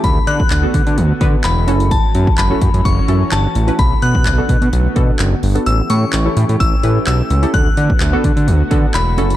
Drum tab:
HH |x-x-x-xxx-x-x-xx|x-x-x-xxx-x-x-xx|x-x-x-xxx-x-x-ox|x-x-x-xxx-x-x-xx|
CP |----x-------x---|----x-------x---|----x-------x---|----x-------x---|
BD |o--o--o---o-----|o--o--o-o-------|o--o--o---o-----|--------o-------|

HH |x-x-x-xxx-x-x-xx|
CP |----x-------x---|
BD |o--o--o---o-----|